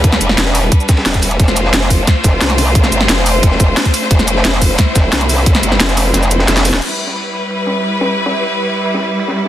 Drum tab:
CC |--------------------------------|--------------------------------|--------------------------------|--------------------------------|
RD |x---x---x---x-x-----x-x-x-x-x---|x---x---x---x---x---x---x---x---|x-x---x-x---x-x-x---x---x---x---|x---x---x---x---x---x---x---x---|
HH |x---x---x---o---x---x---x-x-o-x-|x---x---x---o---x---x---x-x-o---|x---x---x---o---x---x---x-x-o---|x---x---x---o---x---x---x-x-o---|
SH |--x-x-------x-----x-x-----x-x---|--x-x-------x-------x-------x---|--x-x-------x-------x-------x---|--x-x-------x-------x-------x---|
SD |--o---o-o---o-------o-o-o-o-----|--o---o-o-------o---o---o-o-o---|--o---o-o---------o-----o-o---o-|--o---o-o-------o---o---o-o---o-|
BD |o---------------o---o-----o-----|o-----------o---o---o-----------|o---------------o---o-----o-----|o-----------o---o---o-----------|

CC |--------------------------------|x-------------------------------|--------------------------------|
RD |x---x---x---x---x---x-x-xxxxx---|x---x---x---x---x---x---x---x---|x-x---x-x---x-x-x---x---x---x---|
HH |x---x---x---o---x---x---x-x-o---|--------------------------------|--------------------------------|
SH |--x-x-----x-x-----x-x-----x-x---|--------------------------------|--------------------------------|
SD |--o---o-o---o---o-----o-ooooo-o-|------o-------------o-------o---|--o---------------o-------o-----|
BD |o-------------------------------|--------------------------------|--------------------------------|